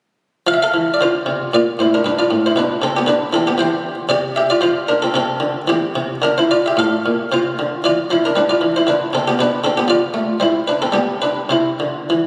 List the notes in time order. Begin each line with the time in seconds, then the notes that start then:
0.47 F3 F5
0.54 E5
0.62 A4 F5
0.74 E3
0.94 D5
1.01 D3 F4 C5
1.26 C3
1.54 A#2 F4 D5
1.79 A2 E4 C5
1.94 D4 A#4
2.05 G2 D4 B4
2.19 F4 D5
2.31 A2
2.46 E4 C5
2.56 B2 D4 B4
2.82 C3 C4 A4
2.97 B3 G4
3.06 D3 D4 B4
3.33 E3 C4 A4
3.47 B3 G4
3.58 E3 C5 G5
4.09 C3 G4 D5
4.36 G4 E5
4.50 F4 D5
4.61 F3 F4 C5
4.88 D4 A#4
5.02 C4 A4
5.14 C3 C4 A4
5.40 D3
5.68 E3 C4 G4
5.96 C3
6.22 D3 D4 A#4
6.38 E4 C5
6.51 F4 D5
6.66 G4 E5
6.77 A2 A4 F5
7.06 A#2
7.32 C3 F4 C5
7.59 D3
7.84 E3 F4 D5
8.11 F3 E4 C5
8.25 D4 A#4
8.36 G3 D4 B4
8.49 F4 D5
8.61 E3
8.76 E4 C5
8.87 D3 D4 B4
9.13 C3 C4 A4
9.28 B3 G4
9.39 B2 D4 B4
9.64 D3 C4 A4
9.77 B3 G4
9.88 F3 F4 D5
10.14 A3
10.40 G3 E4 C5
10.68 D4 B4
10.82 C4 A4
10.92 G3 B3 G4
11.22 D4 B4
11.49 C3 E4 C5
11.80 D3
12.10 E3